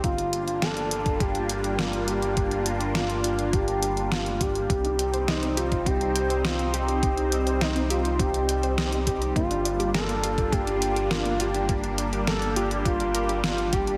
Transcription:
0.04 analog synth bass G1, analog synth pad G3 A#3 D4 F4, analog synth lead F4, kick, closed hi-hat
0.18 closed hi-hat
0.33 closed hi-hat
0.48 closed hi-hat
0.62 analog synth lead A4, snare, closed hi-hat
0.77 closed hi-hat
0.91 closed hi-hat
1.06 kick, closed hi-hat
1.20 analog synth lead G4, kick, closed hi-hat
1.35 closed hi-hat
1.49 closed hi-hat
1.64 closed hi-hat
1.79 analog synth lead F4, snare, closed hi-hat
1.93 closed hi-hat
2.08 analog synth lead G4, closed hi-hat
2.22 closed hi-hat
2.37 kick, closed hi-hat
2.51 closed hi-hat
2.66 closed hi-hat
2.81 closed hi-hat
2.95 analog synth lead F4, snare, closed hi-hat
3.10 closed hi-hat
3.24 closed hi-hat
3.39 closed hi-hat
3.53 analog synth lead G4, kick, closed hi-hat
3.68 closed hi-hat
3.83 closed hi-hat
3.97 closed hi-hat
4.12 analog synth lead F4, snare, closed hi-hat
4.26 closed hi-hat
4.41 analog synth lead G4, kick, closed hi-hat
4.55 closed hi-hat
4.70 analog synth bass C2, analog synth pad G3 C4 D#4 C5, synth arpeggio sound C4, kick, closed hi-hat
4.84 synth arpeggio sound D#4, closed hi-hat
4.99 synth arpeggio sound G5, closed hi-hat
5.14 synth arpeggio sound C5, closed hi-hat
5.28 analog synth lead D#4, synth arpeggio sound D#5, snare, closed hi-hat
5.43 synth arpeggio sound C4, closed hi-hat
5.57 analog synth lead F4, synth arpeggio sound G4, closed hi-hat
5.72 synth arpeggio sound D#4, kick, closed hi-hat
5.86 synth arpeggio sound C4, analog synth lead G4, kick, closed hi-hat
6.01 synth arpeggio sound D#4, closed hi-hat
6.15 synth arpeggio sound G5, closed hi-hat
6.30 synth arpeggio sound C5, closed hi-hat
6.45 analog synth lead F4, synth arpeggio sound D#5, snare, closed hi-hat
6.59 synth arpeggio sound C4, closed hi-hat
6.74 synth arpeggio sound G4, analog synth lead G4, closed hi-hat
6.88 synth arpeggio sound D#4, closed hi-hat
7.03 synth arpeggio sound C4, kick, closed hi-hat
7.17 synth arpeggio sound D#4, closed hi-hat
7.32 synth arpeggio sound G5, closed hi-hat
7.47 synth arpeggio sound C5, closed hi-hat
7.61 analog synth lead D#4, synth arpeggio sound D#5, snare, closed hi-hat
7.76 synth arpeggio sound C4, closed hi-hat
7.90 analog synth lead F4, synth arpeggio sound G4, closed hi-hat
8.05 synth arpeggio sound D#4, closed hi-hat
8.19 synth arpeggio sound C4, analog synth lead G4, kick, closed hi-hat
8.34 synth arpeggio sound D#4, closed hi-hat
8.49 synth arpeggio sound G5, closed hi-hat
8.63 synth arpeggio sound C5, closed hi-hat
8.78 synth arpeggio sound D#5, snare, closed hi-hat
8.92 synth arpeggio sound C4, closed hi-hat
9.07 synth arpeggio sound G4, analog synth lead G4, kick, closed hi-hat
9.21 synth arpeggio sound D#4, closed hi-hat
9.36 analog synth bass G1, synth arpeggio sound A#3, analog synth pad A#3 D4 F4, analog synth lead F4, kick, closed hi-hat
9.51 synth arpeggio sound D4, closed hi-hat
9.65 synth arpeggio sound D5, closed hi-hat
9.80 synth arpeggio sound G4, closed hi-hat
9.94 analog synth lead A4, synth arpeggio sound A#4, snare, closed hi-hat
10.09 synth arpeggio sound A#3, closed hi-hat
10.23 synth arpeggio sound F4, closed hi-hat
10.38 synth arpeggio sound D4, kick, closed hi-hat
10.52 synth arpeggio sound A#3, analog synth lead G4, kick, closed hi-hat
10.67 synth arpeggio sound D4, closed hi-hat
10.82 synth arpeggio sound D5, closed hi-hat
10.96 synth arpeggio sound G4, closed hi-hat
11.10 analog synth lead F4, synth arpeggio sound A#4, snare, closed hi-hat
11.25 synth arpeggio sound A#3, closed hi-hat
11.40 synth arpeggio sound F4, analog synth lead G4, closed hi-hat
11.54 synth arpeggio sound D4, closed hi-hat
11.69 synth arpeggio sound A#3, analog synth pad G4, kick, closed hi-hat
11.84 synth arpeggio sound D4, closed hi-hat
11.98 synth arpeggio sound D5, closed hi-hat
12.13 synth arpeggio sound G4, closed hi-hat
12.27 analog synth lead A4, synth arpeggio sound A#4, snare, closed hi-hat
12.42 synth arpeggio sound A#3, closed hi-hat
12.56 synth arpeggio sound F4, analog synth lead G4, closed hi-hat
12.71 synth arpeggio sound D4, closed hi-hat
12.85 synth arpeggio sound A#3, analog synth lead F4, kick, closed hi-hat
13.00 synth arpeggio sound D4, closed hi-hat
13.15 synth arpeggio sound A#4, closed hi-hat
13.29 synth arpeggio sound G4, closed hi-hat
13.44 analog synth lead F4, synth arpeggio sound F4, snare, closed hi-hat
13.58 synth arpeggio sound F5, closed hi-hat
13.73 analog synth lead G4, synth arpeggio sound G4, kick, closed hi-hat
13.87 synth arpeggio sound D4, closed hi-hat

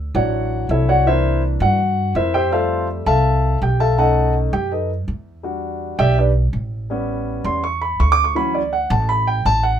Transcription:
0.15 upright bass A1, grand piano E3 F#3 D4 F#4 C#5 D5 F#5
0.69 upright bass C2, grand piano E4 A4 C#5 E5
0.89 grand piano F#4 C#5 D5 F#5
1.06 grand piano E3 A#3 D4 E4 A#4 C5 E5
1.60 upright bass G2, grand piano E3 A#3 D4 F#4 F#5
2.15 upright bass F2, grand piano E4 A#4 C5 E5
2.34 grand piano G4 C5 E5 G5
2.51 grand piano G3 A3 F4 A4 C5 E5 F5
3.06 upright bass C2, grand piano A4 E5 F5 A5
3.62 upright bass B1, grand piano G4 G5
3.80 grand piano A4 E5 F5 A5
3.97 grand piano A3 C#4 D#4 A4 D#5 F#5 A5
4.53 upright bass F#2, grand piano G4 G5
4.72 grand piano D#4 A4 B4 D#5
5.08 upright bass E2
5.43 grand piano G3 D4 F#4
5.99 upright bass B1, grand piano G4 D5 E5 G5
6.18 grand piano D4 G4 B4 D5
6.53 upright bass A1
6.90 grand piano G3 B3 C#4
7.44 upright bass E2, grand piano G3 B3 C#4 C6
7.64 grand piano C#6
7.82 grand piano B5
8.00 upright bass D2, grand piano C#6
8.12 grand piano D6
8.24 grand piano C#6
8.35 grand piano E3 F#3 C#4 B5
8.55 grand piano D5
8.73 grand piano F#5
8.90 upright bass A1, grand piano A5
9.09 grand piano B5
9.27 grand piano G5
9.45 upright bass A1, grand piano A5
9.63 grand piano F#5

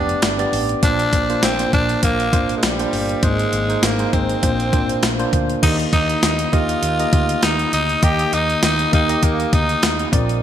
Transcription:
Already playing: fretless electric bass F1, tine electric piano G2 B3 D4 G4 D5, tenor saxophone D4
0.09 closed hi-hat
0.22 fretless electric bass G1, snare, closed hi-hat
0.38 tine electric piano B3 D4 G4 D5, closed hi-hat
0.52 fretless electric bass A1, open hi-hat
0.69 closed hi-hat
0.82 fretless electric bass A#1, tine electric piano A#2 A#3 D4 F4 C5, tenor saxophone D4, kick, closed hi-hat
0.99 closed hi-hat
1.13 fretless electric bass A#1, kick, closed hi-hat
1.29 tine electric piano A#3 D4 F4 C5, closed hi-hat
1.43 fretless electric bass A#1, tenor saxophone C4, snare, closed hi-hat
1.59 tine electric piano A#3 D4 F4 C5, closed hi-hat
1.73 fretless electric bass A#1, tenor saxophone D4, kick, closed hi-hat
1.89 closed hi-hat
2.03 fretless electric bass A#1, tenor saxophone A#3, kick, closed hi-hat
2.20 closed hi-hat
2.32 fretless electric bass G#1, tine electric piano A#3 D4 F4 C5, kick, closed hi-hat
2.49 closed hi-hat
2.57 tenor saxophone G#3
2.63 fretless electric bass A#1, tenor saxophone G3, snare, closed hi-hat
2.79 tine electric piano A#3 D4 F4 C5, closed hi-hat
2.93 fretless electric bass G1, open hi-hat
3.09 closed hi-hat
3.22 fretless electric bass G#1, tine electric piano G#2 A#3 D#4 G#4 C5, tenor saxophone G#3, kick, closed hi-hat
3.39 closed hi-hat
3.53 fretless electric bass G#1, closed hi-hat
3.69 tine electric piano A#3 D#4 G#4 C5, closed hi-hat
3.83 fretless electric bass G#1, tenor saxophone A#3, snare, closed hi-hat
3.99 tine electric piano A#3 D#4 G#4 C5, closed hi-hat
4.13 fretless electric bass G#1, tenor saxophone C4, kick, closed hi-hat
4.29 closed hi-hat
4.42 fretless electric bass A#1, tine electric piano A#2 A#3 D4 F4 C5, kick, closed hi-hat
4.60 closed hi-hat
4.72 fretless electric bass G#1, tine electric piano A#3 D4 F4 C5, kick, closed hi-hat
4.89 closed hi-hat
5.03 fretless electric bass A#1, snare, closed hi-hat
5.19 tine electric piano A#3 D4 F4 C5, closed hi-hat
5.33 fretless electric bass D2, kick, closed hi-hat
5.50 closed hi-hat
5.62 fretless electric bass D#2, tine electric piano D#3 A#3 D#4 G4 D#5, tenor saxophone D#4, kick, closed hi-hat, crash
5.79 closed hi-hat
5.93 fretless electric bass D#2, tenor saxophone D#4, kick, closed hi-hat
6.10 closed hi-hat
6.22 fretless electric bass D#2, snare, closed hi-hat
6.39 closed hi-hat
6.52 fretless electric bass D#2, tine electric piano A#3 D#4 G4 D#5, tenor saxophone F4, kick, closed hi-hat
6.69 closed hi-hat
6.82 fretless electric bass D#2, closed hi-hat
6.99 tine electric piano A#3 D#4 G4 D#5, closed hi-hat
7.13 fretless electric bass D2, kick, closed hi-hat
7.29 closed hi-hat
7.42 fretless electric bass D#2, tenor saxophone D#4, snare, closed hi-hat
7.59 closed hi-hat
7.73 fretless electric bass D2, tenor saxophone D#4, closed hi-hat
7.89 closed hi-hat
8.02 fretless electric bass D#2, tine electric piano D#3 A#3 D#4 G4 D#5, tenor saxophone G4, kick, closed hi-hat
8.19 closed hi-hat
8.32 fretless electric bass D#2, tenor saxophone D#4, closed hi-hat
8.50 closed hi-hat
8.63 fretless electric bass D#2, tenor saxophone D#4, snare, closed hi-hat
8.79 closed hi-hat
8.92 fretless electric bass D#2, tine electric piano A#3 D#4 G4 F5, tenor saxophone D#4, kick, closed hi-hat
9.09 tine electric piano A#3 D#4 G4 D#5, closed hi-hat
9.23 fretless electric bass D#2, tenor saxophone A#3, kick, closed hi-hat
9.40 closed hi-hat
9.53 fretless electric bass D2, tenor saxophone D#4, kick, closed hi-hat
9.69 closed hi-hat
9.83 fretless electric bass D#2, snare, closed hi-hat
9.99 closed hi-hat
10.12 fretless electric bass A#1, tine electric piano A#2 C4 F4 A#4 D5, kick, closed hi-hat
10.29 closed hi-hat

